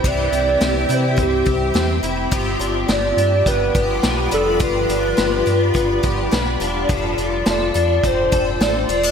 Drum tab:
HH |xxxxxxxx|xxxxxxxx|xxxxxxxx|xxxxxxxx|
SD |--o---o-|--o---o-|--o---o-|--o---o-|
BD |o---oo--|o---oo--|o---oo--|o---oo--|